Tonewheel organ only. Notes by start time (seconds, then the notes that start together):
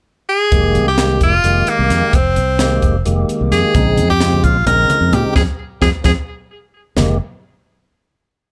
0.52 D#3 G#3 A#3 G4
0.98 D#3 G#3 A#3 G4
1.44 D#3 G#3 A#3 G4
2.60 D#3 G#3 A#3 G4
3.05 D#3 G#3 A#3 G4
3.75 C#3 G#3 C4 D#4
4.20 C#3 G#3 C4 F4
4.67 C#3 G#3 C4 D#4
5.35 F3 G#3 C4
5.81 F3 G#3 C4
6.03 F3 G#3 C4
6.96 D#3 G#3 A#3 G4